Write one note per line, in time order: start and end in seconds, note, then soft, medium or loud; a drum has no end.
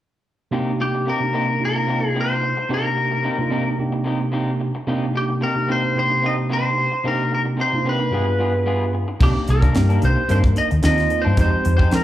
0.51 1.09 C3 medium
0.51 0.70 C3 medium
0.51 1.09 A#3 medium
0.51 0.70 A#3 medium
0.51 1.09 D4 medium
0.51 1.09 D#4 medium
0.51 0.71 D#4 medium
0.51 1.10 G4 medium
0.51 0.71 G4 medium
0.80 1.09 G4 medium
0.80 muted clean electric guitar stroke soft
0.94 muted clean electric guitar stroke soft
1.06 1.21 C3 soft
1.06 1.21 A#3 medium
1.06 1.21 D#4 soft
1.06 1.20 G4 medium
1.06 1.64 A#4 medium
1.20 1.31 C3 medium
1.20 1.32 A#3 medium
1.20 1.32 D4 medium
1.20 1.32 D#4 medium
1.20 1.32 G4 medium
1.20 muted clean electric guitar stroke soft
1.32 1.57 C3 medium
1.32 1.49 C3 medium
1.32 1.57 A#3 medium
1.32 1.48 A#3 medium
1.32 1.57 D4 medium
1.32 1.57 D#4 medium
1.32 1.48 D#4 medium
1.32 1.47 G4 medium
1.32 1.57 A#4 medium
1.48 muted clean electric guitar stroke soft
1.59 2.52 C3 medium
1.59 2.52 A#3 medium
1.59 2.52 D4 medium
1.59 2.53 D#4 medium
1.59 2.53 F4 medium
1.65 2.08 A#4 medium
1.76 muted clean electric guitar stroke soft
1.87 2.03 C3 soft
1.87 2.02 A#3 medium
1.87 2.02 D#4 medium
1.87 2.01 G4 medium
2.02 muted clean electric guitar stroke soft
2.08 2.19 G#4 medium
2.15 2.32 C3 medium
2.15 2.33 A#3 medium
2.15 2.33 D#4 medium
2.15 2.34 G4 medium
2.21 2.73 C5 medium
2.42 muted clean electric guitar stroke soft
2.57 muted clean electric guitar stroke soft
2.69 3.26 C3 medium
2.69 2.87 C3 medium
2.69 3.27 A#3 medium
2.69 2.87 A#3 medium
2.69 3.27 D4 medium
2.69 2.88 D#4 medium
2.69 3.27 D#4 medium
2.69 3.27 G4 medium
2.69 2.88 G4 medium
2.74 3.76 A#4 medium
2.97 muted clean electric guitar stroke soft
3.11 muted clean electric guitar stroke soft
3.23 3.38 C3 medium
3.23 3.39 A#3 soft
3.23 3.38 D#4 medium
3.23 3.37 G4 medium
3.38 3.49 C3 medium
3.38 3.49 A#3 medium
3.38 3.49 D4 medium
3.38 3.49 D#4 medium
3.38 3.50 F4 medium
3.38 muted clean electric guitar stroke soft
3.50 3.74 C3 medium
3.50 3.66 C3 medium
3.50 3.74 A#3 medium
3.50 3.65 A#3 medium
3.50 3.74 D4 medium
3.50 3.75 D#4 medium
3.50 3.65 D#4 medium
3.50 3.75 G4 medium
3.50 3.64 G4 medium
3.65 muted clean electric guitar stroke soft
3.78 4.70 C3 medium
3.78 4.70 A#3 medium
3.78 4.70 D4 medium
3.78 4.71 D#4 medium
3.78 4.71 G4 medium
3.92 muted clean electric guitar stroke soft
4.04 4.20 C3 medium
4.04 4.20 A#3 medium
4.04 4.19 D#4 medium
4.04 4.19 G4 medium
4.20 muted clean electric guitar stroke soft
4.32 4.50 C3 medium
4.32 4.50 A#3 medium
4.32 4.50 D#4 medium
4.32 4.51 G4 medium
4.60 muted clean electric guitar stroke soft
4.75 muted clean electric guitar stroke soft
4.87 5.44 C3 medium
4.87 5.04 C3 medium
4.87 5.44 A#3 medium
4.87 5.05 A#3 medium
4.87 5.44 D4 medium
4.87 5.44 D#4 medium
4.87 5.05 D#4 medium
4.87 5.45 G4 medium
4.87 5.05 G4 medium
5.14 5.24 G4 medium
5.14 muted clean electric guitar stroke soft
5.29 muted clean electric guitar stroke soft
5.41 5.56 C3 medium
5.41 5.56 A#3 medium
5.41 5.56 D#4 medium
5.41 5.55 G4 medium
5.41 5.70 A#4 medium
5.55 5.66 C3 medium
5.55 5.66 A#3 medium
5.55 5.67 D4 medium
5.55 5.67 D#4 medium
5.55 5.67 G4 medium
5.55 muted clean electric guitar stroke soft
5.68 5.83 C3 medium
5.68 5.92 C3 medium
5.68 5.83 A#3 medium
5.68 5.92 A#3 medium
5.68 5.92 D4 medium
5.68 5.83 D#4 medium
5.68 5.92 D#4 medium
5.68 5.82 G4 medium
5.68 5.93 G4 medium
5.68 5.98 C5 medium
5.83 muted clean electric guitar stroke soft
5.95 6.87 C3 medium
5.95 6.87 A#3 medium
5.95 6.87 D4 medium
5.95 6.88 D#4 medium
5.95 6.88 G4 medium
5.95 6.25 C5 medium
6.10 muted clean electric guitar stroke soft
6.22 6.37 C3 medium
6.22 6.38 A#3 medium
6.22 6.37 D#4 medium
6.22 6.36 G4 medium
6.22 6.33 D#5 medium
6.38 muted clean electric guitar stroke soft
6.49 6.67 C3 medium
6.49 6.67 A#3 medium
6.49 6.68 D#4 medium
6.49 6.68 G4 medium
6.49 7.07 C5 medium
6.77 muted clean electric guitar stroke soft
6.92 muted clean electric guitar stroke soft
7.04 7.21 C3 medium
7.04 7.61 C3 medium
7.04 7.61 A#3 medium
7.04 7.22 A#3 medium
7.04 7.61 D4 medium
7.04 7.22 D#4 medium
7.04 7.62 D#4 medium
7.04 7.62 G4 medium
7.04 7.22 G4 medium
7.04 7.31 A#4 medium
7.31 7.41 A#4 medium
7.31 muted clean electric guitar stroke soft
7.45 muted clean electric guitar stroke soft
7.57 7.72 C3 medium
7.57 7.73 A#3 soft
7.57 7.72 D#4 medium
7.57 7.71 G4 medium
7.61 7.88 C5 medium
7.73 7.83 C3 medium
7.73 7.84 A#3 medium
7.73 7.84 D4 medium
7.73 7.84 D#4 medium
7.73 7.84 F4 medium
7.73 muted clean electric guitar stroke soft
7.85 8.08 C3 medium
7.85 8.00 C3 medium
7.85 8.08 A#3 medium
7.85 8.00 A#3 medium
7.85 8.09 D4 medium
7.85 8.09 D#4 medium
7.85 8.00 D#4 medium
7.85 7.99 G4 medium
7.85 8.09 A#4 medium
7.89 8.92 B4 medium
8.00 muted clean electric guitar stroke soft
8.11 9.03 G2 medium
8.11 8.27 G3 medium
8.11 9.03 B3 medium
8.11 8.27 B3 medium
8.11 9.03 D4 medium
8.11 9.04 F4 medium
8.11 8.27 F4 medium
8.11 9.04 G#4 medium
8.11 8.26 G#4 medium
8.27 muted clean electric guitar stroke soft
8.39 8.54 G3 medium
8.39 8.54 B3 medium
8.39 8.53 F4 medium
8.39 8.53 G#4 medium
8.54 muted clean electric guitar stroke soft
8.66 8.84 G3 medium
8.66 8.84 B3 medium
8.66 8.84 F4 medium
8.66 8.84 G#4 medium
8.93 muted clean electric guitar stroke soft
9.08 muted clean electric guitar stroke soft
9.20 9.33 C2 medium
9.20 9.35 C3 medium
9.20 9.35 D#3 medium
9.20 9.67 A#3 medium
9.20 9.35 A#3 medium
9.20 9.67 D4 medium
9.20 9.34 D4 medium
9.20 9.67 D#4 medium
9.20 9.68 G4 medium
9.20 9.30 G4 medium
9.20 kick loud
9.20 crash medium
9.35 muted clean electric guitar stroke soft
9.35 muted fingered electric bass stroke soft
9.48 9.71 C2 medium
9.48 10.05 A#4 medium
9.48 muted clean electric guitar stroke soft
9.48 closed hi-hat medium
9.62 9.79 D#3 soft
9.62 9.79 A#3 soft
9.62 9.78 D4 medium
9.62 kick medium
9.62 closed hi-hat soft
9.75 9.98 G2 medium
9.75 10.21 A#3 medium
9.75 10.21 D4 medium
9.75 10.21 D#4 medium
9.75 10.22 G4 medium
9.75 snare medium
9.75 closed hi-hat medium
9.89 10.06 D#3 soft
9.89 10.06 A#3 soft
9.89 10.05 D4 medium
9.89 closed hi-hat soft
10.02 10.15 C2 medium
10.02 10.30 C5 medium
10.02 closed hi-hat medium
10.16 muted clean electric guitar stroke soft
10.29 10.52 G2 medium
10.29 10.44 C3 medium
10.29 10.44 D#3 medium
10.29 10.75 A#3 medium
10.29 10.43 A#3 medium
10.29 10.75 D4 medium
10.29 10.42 D4 medium
10.29 10.75 D#4 medium
10.29 10.76 A#4 medium
10.29 10.38 C5 medium
10.29 closed hi-hat medium
10.44 muted clean electric guitar stroke soft
10.44 kick medium
10.44 closed hi-hat soft
10.56 10.65 D#5 loud
10.56 muted clean electric guitar stroke soft
10.56 closed hi-hat medium
10.71 10.82 D#2 medium
10.71 muted clean electric guitar stroke soft
10.71 closed hi-hat soft
10.82 11.06 D#2 medium
10.82 10.98 C3 medium
10.82 10.98 D#3 medium
10.82 11.29 A#3 medium
10.82 10.98 A#3 medium
10.82 11.29 C4 medium
10.82 10.97 D4 soft
10.82 11.30 D#4 medium
10.82 11.30 F4 medium
10.82 11.21 D#5 loud
10.82 snare medium
10.82 closed hi-hat medium
10.98 muted clean electric guitar stroke soft
10.98 snare soft
10.98 closed hi-hat soft
11.10 muted clean electric guitar stroke soft
11.10 closed hi-hat medium
11.22 11.37 D4 medium
11.22 11.39 C5 medium
11.26 11.36 G2 medium
11.26 11.36 D#3 soft
11.26 11.37 A#3 soft
11.36 11.50 F2 medium
11.36 11.52 F3 medium
11.36 11.83 G#3 medium
11.36 11.52 G#3 medium
11.36 11.83 C4 medium
11.36 11.84 D#4 medium
11.36 11.51 D#4 medium
11.36 11.84 G4 medium
11.36 11.50 G4 medium
11.36 kick medium
11.36 closed hi-hat medium
11.41 11.73 C5 medium
11.52 muted clean electric guitar stroke soft
11.64 11.88 F2 medium
11.64 muted clean electric guitar stroke soft
11.64 closed hi-hat medium
11.77 11.95 D#4 soft
11.77 11.94 G4 soft
11.77 11.94 C5 medium
11.77 kick medium
11.81 11.95 G#3 soft
11.91 12.04 F3 medium
11.91 12.04 G#3 medium
11.91 12.04 C4 medium
11.91 12.04 D#4 medium
11.91 12.04 A#4 medium
11.91 snare loud
11.91 closed hi-hat medium
11.95 12.04 A#4 medium